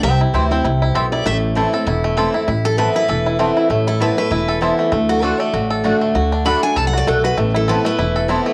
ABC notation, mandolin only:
X:1
M:4/4
L:1/8
Q:"Swing" 1/4=196
K:Ador
V:1 name="Mandolin"
z2 [CEcg] z3 [CEcg] z | z2 [CEca] z3 [CEca] z | z2 [B,Eca] z3 [B,Eca] z | z2 [B,Eca] z3 [B,Eca] z |
z2 [A,Fdf] z3 [A,Fdf] z | z2 [A,Fdf] z3 [A,Fdf] z | z2 [B,Eca] z3 [B,Eca] z |]